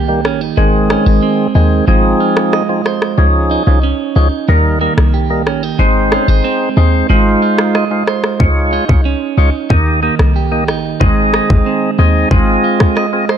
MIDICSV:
0, 0, Header, 1, 5, 480
1, 0, Start_track
1, 0, Key_signature, -4, "minor"
1, 0, Tempo, 652174
1, 423, Time_signature, 4, 2, 24, 8
1, 9845, End_track
2, 0, Start_track
2, 0, Title_t, "Clean electric guitar"
2, 0, Program_c, 0, 27
2, 0, Note_on_c, 0, 51, 81
2, 0, Note_on_c, 0, 58, 61
2, 0, Note_on_c, 0, 63, 59
2, 0, Note_on_c, 0, 67, 68
2, 180, Note_off_c, 0, 63, 0
2, 183, Note_on_c, 0, 61, 60
2, 302, Note_off_c, 0, 61, 0
2, 302, Note_on_c, 0, 63, 51
2, 422, Note_on_c, 0, 56, 83
2, 471, Note_off_c, 0, 58, 0
2, 471, Note_off_c, 0, 63, 0
2, 471, Note_off_c, 0, 67, 0
2, 662, Note_on_c, 0, 61, 63
2, 684, Note_off_c, 0, 51, 0
2, 782, Note_off_c, 0, 61, 0
2, 782, Note_on_c, 0, 63, 50
2, 902, Note_on_c, 0, 60, 63
2, 1133, Note_off_c, 0, 63, 0
2, 1142, Note_on_c, 0, 63, 59
2, 1379, Note_off_c, 0, 56, 0
2, 1382, Note_on_c, 0, 56, 86
2, 1430, Note_off_c, 0, 60, 0
2, 1619, Note_off_c, 0, 63, 0
2, 1622, Note_on_c, 0, 65, 62
2, 1862, Note_on_c, 0, 75, 66
2, 2102, Note_on_c, 0, 72, 58
2, 2390, Note_off_c, 0, 65, 0
2, 2390, Note_off_c, 0, 72, 0
2, 2391, Note_off_c, 0, 56, 0
2, 2583, Note_on_c, 0, 63, 61
2, 2822, Note_on_c, 0, 61, 65
2, 2844, Note_off_c, 0, 75, 0
2, 3060, Note_off_c, 0, 63, 0
2, 3063, Note_on_c, 0, 63, 61
2, 3303, Note_on_c, 0, 51, 84
2, 3351, Note_off_c, 0, 61, 0
2, 3541, Note_on_c, 0, 58, 60
2, 3782, Note_on_c, 0, 67, 69
2, 4019, Note_off_c, 0, 63, 0
2, 4022, Note_on_c, 0, 61, 60
2, 4143, Note_off_c, 0, 61, 0
2, 4143, Note_on_c, 0, 63, 50
2, 4263, Note_on_c, 0, 56, 81
2, 4310, Note_off_c, 0, 58, 0
2, 4311, Note_off_c, 0, 63, 0
2, 4311, Note_off_c, 0, 67, 0
2, 4502, Note_on_c, 0, 61, 65
2, 4524, Note_off_c, 0, 51, 0
2, 4623, Note_off_c, 0, 61, 0
2, 4623, Note_on_c, 0, 63, 52
2, 4742, Note_on_c, 0, 60, 64
2, 4972, Note_off_c, 0, 63, 0
2, 4981, Note_on_c, 0, 63, 56
2, 5220, Note_off_c, 0, 56, 0
2, 5223, Note_on_c, 0, 56, 81
2, 5271, Note_off_c, 0, 60, 0
2, 5460, Note_off_c, 0, 63, 0
2, 5463, Note_on_c, 0, 65, 60
2, 5703, Note_on_c, 0, 75, 69
2, 5943, Note_on_c, 0, 72, 61
2, 6231, Note_off_c, 0, 56, 0
2, 6231, Note_off_c, 0, 65, 0
2, 6231, Note_off_c, 0, 72, 0
2, 6423, Note_on_c, 0, 63, 64
2, 6663, Note_on_c, 0, 61, 66
2, 6685, Note_off_c, 0, 75, 0
2, 6902, Note_off_c, 0, 63, 0
2, 6905, Note_on_c, 0, 63, 59
2, 7142, Note_on_c, 0, 51, 81
2, 7191, Note_off_c, 0, 61, 0
2, 7383, Note_on_c, 0, 58, 59
2, 7624, Note_on_c, 0, 67, 66
2, 7859, Note_off_c, 0, 63, 0
2, 7862, Note_on_c, 0, 63, 62
2, 8102, Note_on_c, 0, 56, 85
2, 8151, Note_off_c, 0, 58, 0
2, 8151, Note_off_c, 0, 67, 0
2, 8339, Note_off_c, 0, 63, 0
2, 8342, Note_on_c, 0, 63, 64
2, 8583, Note_on_c, 0, 60, 61
2, 8820, Note_off_c, 0, 63, 0
2, 8823, Note_on_c, 0, 63, 59
2, 9060, Note_off_c, 0, 56, 0
2, 9063, Note_on_c, 0, 56, 81
2, 9111, Note_off_c, 0, 60, 0
2, 9300, Note_off_c, 0, 63, 0
2, 9303, Note_on_c, 0, 65, 61
2, 9325, Note_off_c, 0, 51, 0
2, 9545, Note_on_c, 0, 75, 68
2, 9785, Note_on_c, 0, 72, 63
2, 9845, Note_off_c, 0, 56, 0
2, 9845, Note_off_c, 0, 65, 0
2, 9845, Note_off_c, 0, 72, 0
2, 9845, Note_off_c, 0, 75, 0
2, 9845, End_track
3, 0, Start_track
3, 0, Title_t, "Tonewheel organ"
3, 0, Program_c, 1, 16
3, 60, Note_on_c, 1, 51, 71
3, 62, Note_on_c, 1, 55, 66
3, 64, Note_on_c, 1, 58, 65
3, 65, Note_on_c, 1, 67, 80
3, 152, Note_off_c, 1, 51, 0
3, 153, Note_off_c, 1, 55, 0
3, 154, Note_off_c, 1, 58, 0
3, 154, Note_off_c, 1, 67, 0
3, 421, Note_on_c, 1, 51, 91
3, 423, Note_on_c, 1, 56, 85
3, 424, Note_on_c, 1, 60, 83
3, 425, Note_on_c, 1, 68, 98
3, 1085, Note_off_c, 1, 51, 0
3, 1085, Note_off_c, 1, 56, 0
3, 1086, Note_off_c, 1, 60, 0
3, 1087, Note_off_c, 1, 68, 0
3, 1141, Note_on_c, 1, 51, 74
3, 1141, Note_on_c, 1, 56, 66
3, 1142, Note_on_c, 1, 60, 65
3, 1144, Note_on_c, 1, 68, 84
3, 1363, Note_off_c, 1, 51, 0
3, 1363, Note_off_c, 1, 56, 0
3, 1364, Note_off_c, 1, 60, 0
3, 1364, Note_off_c, 1, 68, 0
3, 1380, Note_on_c, 1, 53, 93
3, 1382, Note_on_c, 1, 60, 82
3, 1383, Note_on_c, 1, 63, 84
3, 1385, Note_on_c, 1, 68, 99
3, 1934, Note_off_c, 1, 53, 0
3, 1935, Note_off_c, 1, 60, 0
3, 1935, Note_off_c, 1, 63, 0
3, 1936, Note_off_c, 1, 68, 0
3, 1980, Note_on_c, 1, 53, 70
3, 1981, Note_on_c, 1, 60, 65
3, 1983, Note_on_c, 1, 63, 64
3, 1983, Note_on_c, 1, 68, 75
3, 2072, Note_off_c, 1, 53, 0
3, 2072, Note_off_c, 1, 60, 0
3, 2074, Note_off_c, 1, 63, 0
3, 2074, Note_off_c, 1, 68, 0
3, 2338, Note_on_c, 1, 53, 94
3, 2339, Note_on_c, 1, 61, 82
3, 2341, Note_on_c, 1, 63, 82
3, 2343, Note_on_c, 1, 68, 100
3, 2672, Note_off_c, 1, 53, 0
3, 2672, Note_off_c, 1, 61, 0
3, 2673, Note_off_c, 1, 63, 0
3, 2674, Note_off_c, 1, 68, 0
3, 2700, Note_on_c, 1, 53, 75
3, 2701, Note_on_c, 1, 61, 71
3, 2703, Note_on_c, 1, 63, 68
3, 2705, Note_on_c, 1, 68, 82
3, 2792, Note_off_c, 1, 53, 0
3, 2793, Note_off_c, 1, 61, 0
3, 2793, Note_off_c, 1, 63, 0
3, 2794, Note_off_c, 1, 68, 0
3, 3059, Note_on_c, 1, 53, 75
3, 3061, Note_on_c, 1, 61, 69
3, 3062, Note_on_c, 1, 63, 68
3, 3063, Note_on_c, 1, 68, 85
3, 3151, Note_off_c, 1, 53, 0
3, 3152, Note_off_c, 1, 61, 0
3, 3153, Note_off_c, 1, 63, 0
3, 3154, Note_off_c, 1, 68, 0
3, 3300, Note_on_c, 1, 55, 93
3, 3302, Note_on_c, 1, 58, 86
3, 3303, Note_on_c, 1, 63, 83
3, 3305, Note_on_c, 1, 70, 97
3, 3522, Note_off_c, 1, 55, 0
3, 3524, Note_off_c, 1, 58, 0
3, 3524, Note_off_c, 1, 63, 0
3, 3525, Note_off_c, 1, 70, 0
3, 3539, Note_on_c, 1, 55, 74
3, 3541, Note_on_c, 1, 58, 65
3, 3543, Note_on_c, 1, 63, 64
3, 3544, Note_on_c, 1, 70, 80
3, 3632, Note_off_c, 1, 55, 0
3, 3632, Note_off_c, 1, 58, 0
3, 3633, Note_off_c, 1, 63, 0
3, 3634, Note_off_c, 1, 70, 0
3, 3900, Note_on_c, 1, 55, 71
3, 3902, Note_on_c, 1, 58, 64
3, 3903, Note_on_c, 1, 63, 62
3, 3904, Note_on_c, 1, 70, 76
3, 3992, Note_off_c, 1, 55, 0
3, 3993, Note_off_c, 1, 58, 0
3, 3993, Note_off_c, 1, 63, 0
3, 3994, Note_off_c, 1, 70, 0
3, 4261, Note_on_c, 1, 56, 87
3, 4262, Note_on_c, 1, 60, 82
3, 4264, Note_on_c, 1, 63, 81
3, 4265, Note_on_c, 1, 72, 99
3, 4924, Note_off_c, 1, 56, 0
3, 4925, Note_off_c, 1, 60, 0
3, 4926, Note_off_c, 1, 63, 0
3, 4927, Note_off_c, 1, 72, 0
3, 4981, Note_on_c, 1, 56, 72
3, 4981, Note_on_c, 1, 60, 70
3, 4984, Note_on_c, 1, 63, 66
3, 4985, Note_on_c, 1, 72, 82
3, 5203, Note_off_c, 1, 56, 0
3, 5203, Note_off_c, 1, 60, 0
3, 5204, Note_off_c, 1, 63, 0
3, 5205, Note_off_c, 1, 72, 0
3, 5222, Note_on_c, 1, 56, 91
3, 5223, Note_on_c, 1, 63, 82
3, 5225, Note_on_c, 1, 65, 85
3, 5226, Note_on_c, 1, 72, 97
3, 5774, Note_off_c, 1, 56, 0
3, 5775, Note_off_c, 1, 63, 0
3, 5776, Note_off_c, 1, 65, 0
3, 5777, Note_off_c, 1, 72, 0
3, 5820, Note_on_c, 1, 56, 69
3, 5822, Note_on_c, 1, 63, 64
3, 5824, Note_on_c, 1, 65, 64
3, 5825, Note_on_c, 1, 72, 75
3, 5912, Note_off_c, 1, 56, 0
3, 5913, Note_off_c, 1, 63, 0
3, 5914, Note_off_c, 1, 65, 0
3, 5915, Note_off_c, 1, 72, 0
3, 6180, Note_on_c, 1, 56, 93
3, 6181, Note_on_c, 1, 63, 82
3, 6183, Note_on_c, 1, 65, 86
3, 6185, Note_on_c, 1, 73, 94
3, 6513, Note_off_c, 1, 56, 0
3, 6513, Note_off_c, 1, 63, 0
3, 6514, Note_off_c, 1, 65, 0
3, 6515, Note_off_c, 1, 73, 0
3, 6540, Note_on_c, 1, 56, 78
3, 6542, Note_on_c, 1, 63, 67
3, 6543, Note_on_c, 1, 65, 69
3, 6544, Note_on_c, 1, 73, 84
3, 6632, Note_off_c, 1, 56, 0
3, 6633, Note_off_c, 1, 63, 0
3, 6633, Note_off_c, 1, 65, 0
3, 6634, Note_off_c, 1, 73, 0
3, 6898, Note_on_c, 1, 56, 76
3, 6900, Note_on_c, 1, 63, 65
3, 6902, Note_on_c, 1, 65, 67
3, 6904, Note_on_c, 1, 73, 78
3, 6991, Note_off_c, 1, 56, 0
3, 6992, Note_off_c, 1, 63, 0
3, 6993, Note_off_c, 1, 65, 0
3, 6994, Note_off_c, 1, 73, 0
3, 7138, Note_on_c, 1, 58, 91
3, 7140, Note_on_c, 1, 63, 82
3, 7141, Note_on_c, 1, 67, 87
3, 7143, Note_on_c, 1, 75, 105
3, 7361, Note_off_c, 1, 58, 0
3, 7362, Note_off_c, 1, 63, 0
3, 7363, Note_off_c, 1, 67, 0
3, 7364, Note_off_c, 1, 75, 0
3, 7377, Note_on_c, 1, 58, 72
3, 7379, Note_on_c, 1, 63, 64
3, 7380, Note_on_c, 1, 67, 62
3, 7380, Note_on_c, 1, 75, 75
3, 7470, Note_off_c, 1, 58, 0
3, 7471, Note_off_c, 1, 63, 0
3, 7472, Note_off_c, 1, 67, 0
3, 7472, Note_off_c, 1, 75, 0
3, 7737, Note_on_c, 1, 58, 69
3, 7739, Note_on_c, 1, 63, 63
3, 7741, Note_on_c, 1, 67, 69
3, 7742, Note_on_c, 1, 75, 80
3, 7831, Note_off_c, 1, 58, 0
3, 7832, Note_off_c, 1, 63, 0
3, 7832, Note_off_c, 1, 67, 0
3, 7833, Note_off_c, 1, 75, 0
3, 8098, Note_on_c, 1, 60, 86
3, 8099, Note_on_c, 1, 63, 83
3, 8102, Note_on_c, 1, 68, 79
3, 8102, Note_on_c, 1, 75, 101
3, 8763, Note_off_c, 1, 60, 0
3, 8763, Note_off_c, 1, 63, 0
3, 8765, Note_off_c, 1, 68, 0
3, 8765, Note_off_c, 1, 75, 0
3, 8821, Note_on_c, 1, 60, 72
3, 8823, Note_on_c, 1, 63, 68
3, 8825, Note_on_c, 1, 68, 66
3, 8825, Note_on_c, 1, 75, 83
3, 9043, Note_off_c, 1, 60, 0
3, 9044, Note_off_c, 1, 63, 0
3, 9045, Note_off_c, 1, 68, 0
3, 9045, Note_off_c, 1, 75, 0
3, 9061, Note_on_c, 1, 60, 90
3, 9063, Note_on_c, 1, 65, 81
3, 9063, Note_on_c, 1, 68, 83
3, 9066, Note_on_c, 1, 75, 104
3, 9614, Note_off_c, 1, 60, 0
3, 9615, Note_off_c, 1, 65, 0
3, 9615, Note_off_c, 1, 68, 0
3, 9617, Note_off_c, 1, 75, 0
3, 9663, Note_on_c, 1, 60, 70
3, 9663, Note_on_c, 1, 65, 66
3, 9665, Note_on_c, 1, 68, 65
3, 9667, Note_on_c, 1, 75, 81
3, 9753, Note_off_c, 1, 60, 0
3, 9754, Note_off_c, 1, 65, 0
3, 9755, Note_off_c, 1, 68, 0
3, 9755, Note_off_c, 1, 75, 0
3, 9845, End_track
4, 0, Start_track
4, 0, Title_t, "808-style bass"
4, 0, Program_c, 2, 38
4, 0, Note_on_c, 2, 36, 88
4, 183, Note_on_c, 2, 34, 94
4, 194, Note_off_c, 2, 36, 0
4, 377, Note_off_c, 2, 34, 0
4, 424, Note_on_c, 2, 32, 105
4, 713, Note_off_c, 2, 32, 0
4, 783, Note_on_c, 2, 32, 81
4, 880, Note_off_c, 2, 32, 0
4, 1142, Note_on_c, 2, 39, 93
4, 1336, Note_off_c, 2, 39, 0
4, 1381, Note_on_c, 2, 32, 95
4, 1575, Note_off_c, 2, 32, 0
4, 2341, Note_on_c, 2, 37, 103
4, 2632, Note_off_c, 2, 37, 0
4, 2702, Note_on_c, 2, 36, 88
4, 2896, Note_off_c, 2, 36, 0
4, 3062, Note_on_c, 2, 37, 89
4, 3159, Note_off_c, 2, 37, 0
4, 3301, Note_on_c, 2, 39, 94
4, 3592, Note_off_c, 2, 39, 0
4, 3662, Note_on_c, 2, 36, 89
4, 4021, Note_on_c, 2, 34, 94
4, 4032, Note_off_c, 2, 36, 0
4, 4215, Note_off_c, 2, 34, 0
4, 4262, Note_on_c, 2, 32, 102
4, 4552, Note_off_c, 2, 32, 0
4, 4623, Note_on_c, 2, 32, 82
4, 4720, Note_off_c, 2, 32, 0
4, 4983, Note_on_c, 2, 39, 91
4, 5176, Note_off_c, 2, 39, 0
4, 5224, Note_on_c, 2, 32, 95
4, 5417, Note_off_c, 2, 32, 0
4, 6183, Note_on_c, 2, 37, 109
4, 6473, Note_off_c, 2, 37, 0
4, 6545, Note_on_c, 2, 36, 84
4, 6738, Note_off_c, 2, 36, 0
4, 6901, Note_on_c, 2, 37, 86
4, 6999, Note_off_c, 2, 37, 0
4, 7141, Note_on_c, 2, 39, 93
4, 7432, Note_off_c, 2, 39, 0
4, 7502, Note_on_c, 2, 36, 92
4, 7863, Note_on_c, 2, 34, 93
4, 7874, Note_off_c, 2, 36, 0
4, 8056, Note_off_c, 2, 34, 0
4, 8103, Note_on_c, 2, 32, 105
4, 8393, Note_off_c, 2, 32, 0
4, 8465, Note_on_c, 2, 32, 85
4, 8561, Note_off_c, 2, 32, 0
4, 8823, Note_on_c, 2, 39, 97
4, 9016, Note_off_c, 2, 39, 0
4, 9061, Note_on_c, 2, 32, 101
4, 9255, Note_off_c, 2, 32, 0
4, 9845, End_track
5, 0, Start_track
5, 0, Title_t, "Drums"
5, 183, Note_on_c, 9, 37, 92
5, 257, Note_off_c, 9, 37, 0
5, 663, Note_on_c, 9, 37, 98
5, 737, Note_off_c, 9, 37, 0
5, 1742, Note_on_c, 9, 37, 97
5, 1815, Note_off_c, 9, 37, 0
5, 1863, Note_on_c, 9, 37, 86
5, 1936, Note_off_c, 9, 37, 0
5, 2103, Note_on_c, 9, 37, 91
5, 2177, Note_off_c, 9, 37, 0
5, 2222, Note_on_c, 9, 37, 89
5, 2296, Note_off_c, 9, 37, 0
5, 3663, Note_on_c, 9, 37, 102
5, 3736, Note_off_c, 9, 37, 0
5, 4023, Note_on_c, 9, 37, 87
5, 4097, Note_off_c, 9, 37, 0
5, 4504, Note_on_c, 9, 37, 100
5, 4577, Note_off_c, 9, 37, 0
5, 5582, Note_on_c, 9, 37, 99
5, 5656, Note_off_c, 9, 37, 0
5, 5703, Note_on_c, 9, 37, 89
5, 5777, Note_off_c, 9, 37, 0
5, 5943, Note_on_c, 9, 37, 90
5, 6017, Note_off_c, 9, 37, 0
5, 6062, Note_on_c, 9, 37, 90
5, 6136, Note_off_c, 9, 37, 0
5, 6183, Note_on_c, 9, 36, 105
5, 6256, Note_off_c, 9, 36, 0
5, 6545, Note_on_c, 9, 36, 86
5, 6618, Note_off_c, 9, 36, 0
5, 7141, Note_on_c, 9, 36, 97
5, 7215, Note_off_c, 9, 36, 0
5, 7502, Note_on_c, 9, 37, 102
5, 7576, Note_off_c, 9, 37, 0
5, 7863, Note_on_c, 9, 37, 90
5, 7937, Note_off_c, 9, 37, 0
5, 8103, Note_on_c, 9, 36, 105
5, 8177, Note_off_c, 9, 36, 0
5, 8344, Note_on_c, 9, 37, 101
5, 8417, Note_off_c, 9, 37, 0
5, 8465, Note_on_c, 9, 36, 89
5, 8538, Note_off_c, 9, 36, 0
5, 9061, Note_on_c, 9, 36, 93
5, 9134, Note_off_c, 9, 36, 0
5, 9423, Note_on_c, 9, 36, 81
5, 9423, Note_on_c, 9, 37, 102
5, 9496, Note_off_c, 9, 36, 0
5, 9496, Note_off_c, 9, 37, 0
5, 9544, Note_on_c, 9, 37, 86
5, 9617, Note_off_c, 9, 37, 0
5, 9783, Note_on_c, 9, 37, 89
5, 9845, Note_off_c, 9, 37, 0
5, 9845, End_track
0, 0, End_of_file